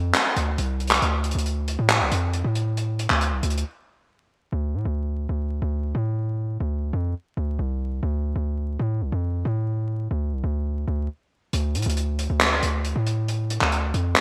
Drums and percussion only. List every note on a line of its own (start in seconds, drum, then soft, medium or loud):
0.14 clap loud
0.14 closed hi-hat medium
0.36 closed hi-hat medium
0.58 closed hi-hat medium
0.80 closed hi-hat soft
0.87 clap medium
0.87 closed hi-hat medium
0.95 closed hi-hat medium
1.02 closed hi-hat medium
1.24 closed hi-hat medium
1.31 closed hi-hat medium
1.39 closed hi-hat medium
1.46 closed hi-hat medium
1.68 closed hi-hat medium
1.90 clap loud
1.90 closed hi-hat medium
2.12 closed hi-hat loud
2.33 closed hi-hat medium
2.55 closed hi-hat medium
2.77 closed hi-hat medium
2.99 closed hi-hat medium
3.10 clap medium
3.21 closed hi-hat medium
3.43 closed hi-hat medium
3.50 closed hi-hat medium
3.58 closed hi-hat medium
11.53 closed hi-hat medium
11.75 closed hi-hat medium
11.82 closed hi-hat medium
11.90 closed hi-hat medium
11.97 closed hi-hat medium
12.19 closed hi-hat medium
12.41 clap loud
12.41 closed hi-hat medium
12.63 closed hi-hat loud
12.85 closed hi-hat medium
13.07 closed hi-hat medium
13.28 closed hi-hat medium
13.50 closed hi-hat medium
13.61 clap medium
13.72 closed hi-hat medium
13.94 closed hi-hat medium
14.16 clap loud
14.16 closed hi-hat medium